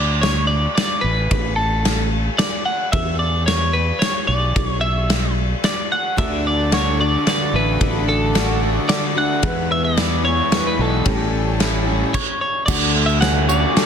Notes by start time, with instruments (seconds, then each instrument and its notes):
Already playing: fingered electric bass D2, clean electric guitar D5
0.21 clean electric guitar C#5, snare, ride
0.47 clean electric guitar D5
0.75 clean electric guitar D5, snare, ride
1.01 fingered electric bass A1, clean electric guitar B4
1.31 fingered electric bass A1, kick, ride
1.56 clean electric guitar A4
1.85 snare, ride
2.39 clean electric guitar D5, snare, ride
2.66 clean electric guitar F#5
2.92 fingered electric bass E2, clean electric guitar E5, kick, ride
3.19 clean electric guitar D5
3.46 clean electric guitar C#5, snare, ride
3.73 clean electric guitar B4
3.99 clean electric guitar C#5, snare, ride
4.27 fingered electric bass B1, clean electric guitar D5
4.56 fingered electric bass B1, kick, ride
4.68 clean electric guitar C#5
4.81 clean electric guitar E5
5.10 snare, ride
5.64 clean electric guitar D5, snare, ride
5.92 clean electric guitar F#5
6.16 fingered electric bass D2, steel-string acoustic guitar D3 A3 D4 F#4, grand piano F#4 A4 D5, accordion A4 D5 F#5 D6, clean electric guitar E5, kick, ride
6.47 clean electric guitar D5
6.71 steel-string acoustic guitar D3 A3 D4 F#4, grand piano F#4 A4 D5, clean electric guitar C#5, snare, ride
6.99 steel-string acoustic guitar A3 D4 F#4, clean electric guitar D5
7.26 steel-string acoustic guitar D3 A3 D4 F#4, grand piano F#4 A4 B4, clean electric guitar D5, snare, ride
7.53 fingered electric bass A1, overdriven electric guitar A3, clean electric guitar B4
7.80 fingered electric bass A1, steel-string acoustic guitar D3 A3 D4 F#4, kick, ride
8.09 clean electric guitar A4
8.34 steel-string acoustic guitar D3 A3 D4 F#4, grand piano F#4 A4 D5, snare, ride
8.62 overdriven electric guitar D4
8.88 steel-string acoustic guitar D3 A3 D4 F#4, grand piano F#4 A4 D5, clean electric guitar D5, snare, ride
9.15 steel-string acoustic guitar A3 D4 F#4, clean electric guitar F#5
9.42 steel-string acoustic guitar E2 B2 E3 G#3 B3 E4, fingered electric bass E2, grand piano E4 G#4 B4, accordion B4 E5 G#5 E6, kick, ride
9.72 clean electric guitar E5
9.85 clean electric guitar D5
9.96 steel-string acoustic guitar E3 G#3 B3 E4, grand piano E4 G#4 B4, snare, ride
10.23 steel-string acoustic guitar E3 G#3 B3 E4, clean electric guitar C#5
10.50 steel-string acoustic guitar E3 G#3 B3 E4, grand piano E4 G#4 B4, snare, ride
10.67 clean electric guitar B4
10.79 fingered electric bass B1, overdriven electric guitar G#3, clean electric guitar A4
11.04 fingered electric bass A1, steel-string acoustic guitar A2 E3 G3 C#4 E4, grand piano C#4 G4 A4, accordion C#5 G5 A5, kick, ride
11.58 steel-string acoustic guitar E3 G3 C#4 E4, grand piano C#4 G4 A4, snare, ride
11.86 steel-string acoustic guitar G3 C#4 E4
12.14 clean electric guitar C#5, kick, crash
12.41 clean electric guitar C#5
12.66 fingered electric bass D2, steel-string acoustic guitar D3 A3 F#4, grand piano F#4 A4 C#6, clean electric guitar D5, kick, crash, tambourine
12.96 overdriven electric guitar A3
13.06 clean electric guitar E5, tambourine
13.21 steel-string acoustic guitar D3 A3 C#4 F#4, grand piano F#4 A4 B4, clean electric guitar F#5, snare, ride, tambourine
13.49 steel-string acoustic guitar A3 C#4 F#4, clean electric guitar D5, tambourine
13.75 steel-string acoustic guitar D3 A3 C#4, grand piano F#4 A4 C#5, snare, ride
13.79 steel-string acoustic guitar F#4